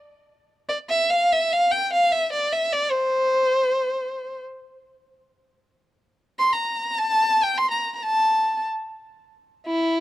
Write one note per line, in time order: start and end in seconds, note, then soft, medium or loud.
0.69 0.78 D5 medium
0.90 1.12 E5 loud
1.10 1.34 F5 loud
1.33 1.54 E5 loud
1.53 1.73 F5 loud
1.71 1.90 G5 loud
1.93 2.14 F5 medium
2.12 2.30 E5 loud
2.33 2.54 D5 medium
2.53 2.74 E5 medium
2.73 2.93 D5 loud
2.91 4.40 C5 medium
6.39 6.54 C6 loud
6.53 7.00 A#5 medium
6.99 7.44 A5 loud
7.43 7.59 G5 loud
7.58 7.71 C6 loud
7.71 7.93 A#5 medium
7.95 8.04 A#5 medium
8.03 8.62 A5 medium
9.66 10.00 E4 medium